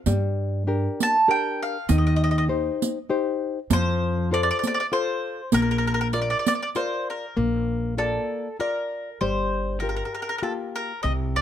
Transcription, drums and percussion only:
0.06 riq soft
1.00 riq soft
1.89 riq medium
2.82 riq soft
3.70 riq medium
4.63 riq soft
5.52 riq soft
6.13 riq soft
6.47 riq soft
6.75 riq soft

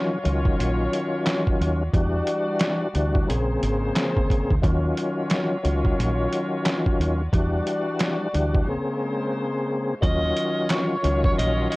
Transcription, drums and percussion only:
0.25 closed hi-hat medium
0.45 kick loud
0.60 closed hi-hat loud
0.93 closed hi-hat medium
1.26 finger snap medium
1.26 snare loud
1.26 clap loud
1.26 closed hi-hat medium
1.47 kick medium
1.61 closed hi-hat medium
1.93 kick loud
1.93 closed hi-hat medium
2.27 closed hi-hat medium
2.60 finger snap medium
2.60 snare loud
2.60 clap medium
2.60 closed hi-hat medium
2.95 closed hi-hat medium
3.15 kick loud
3.30 closed hi-hat medium
3.63 closed hi-hat medium
3.96 finger snap medium
3.96 snare loud
3.96 clap medium
3.96 closed hi-hat medium
4.17 kick loud
4.30 kick loud
4.30 closed hi-hat medium
4.50 kick medium
4.63 kick loud
4.63 closed hi-hat medium
4.97 closed hi-hat medium
5.30 finger snap medium
5.30 snare loud
5.30 clap medium
5.30 closed hi-hat medium
5.65 closed hi-hat medium
5.85 kick loud
6.00 closed hi-hat medium
6.33 closed hi-hat medium
6.65 finger snap medium
6.65 snare loud
6.65 clap loud
6.65 closed hi-hat medium
6.86 kick medium
7.01 closed hi-hat medium
7.33 kick loud
7.33 closed hi-hat medium
7.67 closed hi-hat medium
7.99 finger snap medium
7.99 snare loud
7.99 clap medium
7.99 closed hi-hat medium
8.34 closed hi-hat medium
8.54 kick loud
10.03 kick loud
10.03 closed hi-hat medium
10.36 closed hi-hat medium
10.69 finger snap medium
10.69 snare loud
10.69 clap medium
10.69 closed hi-hat medium
11.04 closed hi-hat medium
11.24 kick loud
11.39 closed hi-hat loud
11.72 closed hi-hat medium

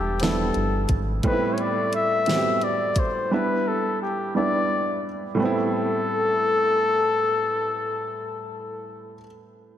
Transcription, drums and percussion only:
0.20 snare loud
0.20 closed hi-hat medium
0.54 closed hi-hat soft
0.89 kick loud
0.89 closed hi-hat medium
1.23 kick loud
1.23 closed hi-hat medium
1.58 closed hi-hat medium
1.93 closed hi-hat medium
2.26 snare loud
2.26 closed hi-hat medium
2.62 closed hi-hat soft
2.96 kick medium
2.96 closed hi-hat medium

